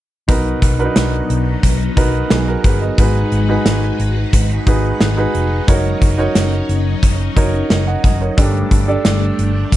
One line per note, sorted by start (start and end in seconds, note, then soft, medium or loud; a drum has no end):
0.28 0.53 B1 medium
0.28 1.26 B2 medium
0.28 2.96 F#3 medium
0.28 2.96 B3 medium
0.28 0.67 D#4 medium
0.28 2.96 D#4 medium
0.28 0.67 F#4 medium
0.28 0.67 A#4 medium
0.28 0.67 B4 medium
0.28 kick loud
0.28 closed hi-hat medium
0.62 0.87 B1 medium
0.62 kick medium
0.62 closed hi-hat medium
0.79 0.85 D4 medium
0.79 1.69 F#4 medium
0.79 1.70 A#4 medium
0.79 1.70 B4 medium
0.85 1.72 D#4 medium
0.96 1.20 B1 medium
0.96 snare loud
0.96 closed hi-hat medium
1.30 1.54 B1 medium
1.30 closed hi-hat medium
1.63 1.88 B1 medium
1.63 kick medium
1.63 closed hi-hat medium
1.97 2.21 B1 medium
1.97 2.36 D#4 medium
1.97 2.31 F#4 medium
1.97 2.31 A#4 medium
1.97 2.31 B4 medium
1.97 kick medium
1.97 closed hi-hat medium
2.30 2.55 B1 medium
2.30 2.47 G#4 medium
2.30 snare loud
2.30 closed hi-hat medium
2.48 2.64 F#4 medium
2.48 2.64 A#4 medium
2.64 2.89 G1 medium
2.64 2.81 G#4 medium
2.64 2.81 B4 medium
2.64 kick medium
2.64 closed hi-hat medium
2.82 2.98 B4 medium
2.82 3.14 D#5 medium
2.98 3.23 G#1 loud
2.98 3.95 G#2 medium
2.98 5.65 G#3 medium
2.98 3.37 D#4 medium
2.98 8.34 D#4 medium
2.98 5.65 F#4 medium
2.98 3.37 F#4 medium
2.98 3.37 G#4 medium
2.98 5.65 B4 medium
2.98 3.37 B4 medium
2.98 kick loud
2.98 closed hi-hat medium
3.32 3.56 G#1 medium
3.32 closed hi-hat medium
3.48 4.39 D#4 medium
3.48 4.39 F#4 medium
3.48 4.39 G#4 medium
3.48 4.40 B4 medium
3.66 3.90 G#1 medium
3.66 snare loud
3.66 closed hi-hat medium
3.99 4.24 G#1 medium
3.99 closed hi-hat medium
4.33 4.57 G#1 loud
4.33 kick medium
4.33 closed hi-hat loud
4.66 4.91 G#1 medium
4.66 5.05 D#4 medium
4.66 5.06 F#4 medium
4.66 5.06 G#4 medium
4.66 5.06 B4 medium
4.66 kick medium
4.66 closed hi-hat medium
5.01 5.25 G#1 medium
5.01 snare loud
5.01 closed hi-hat medium
5.17 5.56 D#4 medium
5.17 5.56 F#4 medium
5.17 5.56 G#4 medium
5.17 5.56 B4 medium
5.35 5.59 F1 medium
5.35 closed hi-hat medium
5.67 5.92 F#1 medium
5.67 8.35 F#3 medium
5.67 8.35 C#4 medium
5.67 6.06 D#4 medium
5.67 6.07 F#4 medium
5.67 6.07 A#4 medium
5.67 6.07 C#5 medium
5.67 kick loud
5.67 closed hi-hat medium
6.02 6.26 F#1 medium
6.02 kick medium
6.02 closed hi-hat medium
6.18 7.08 D#4 medium
6.18 7.09 F#4 medium
6.18 7.09 A#4 medium
6.18 7.09 C#5 medium
6.35 6.60 F#1 medium
6.35 snare loud
6.35 closed hi-hat medium
6.69 6.93 F#1 medium
6.69 closed hi-hat medium
7.03 7.27 F#1 medium
7.03 kick medium
7.03 closed hi-hat medium
7.36 7.61 F#1 medium
7.36 7.75 D#4 medium
7.36 7.75 F#4 medium
7.36 7.70 A#4 medium
7.36 7.71 C#5 medium
7.36 kick medium
7.36 closed hi-hat medium
7.70 7.95 F#1 medium
7.70 7.86 D#5 medium
7.70 snare loud
7.70 closed hi-hat medium
7.87 8.03 D#5 medium
7.87 8.03 F#5 medium
8.04 8.28 F#1 medium
8.04 8.20 D#5 medium
8.04 kick medium
8.04 closed hi-hat medium
8.21 8.53 A#4 medium
8.21 8.53 C#5 medium
8.37 8.62 G1 loud
8.37 9.35 G2 medium
8.37 9.77 G3 medium
8.37 9.77 A3 medium
8.37 8.76 D4 medium
8.37 9.77 D4 medium
8.37 8.76 G4 medium
8.37 8.76 A4 medium
8.37 8.76 D5 medium
8.37 kick loud
8.37 closed hi-hat medium
8.71 8.96 G1 medium
8.71 kick medium
8.71 closed hi-hat medium
8.88 9.77 D4 medium
8.88 9.77 G4 medium
8.88 9.77 A4 medium
8.88 9.77 D5 medium
9.05 9.29 G1 loud
9.05 snare loud
9.05 closed hi-hat medium
9.39 9.63 G1 medium
9.39 closed hi-hat medium
9.72 9.77 G1 medium
9.72 kick medium
9.72 closed hi-hat loud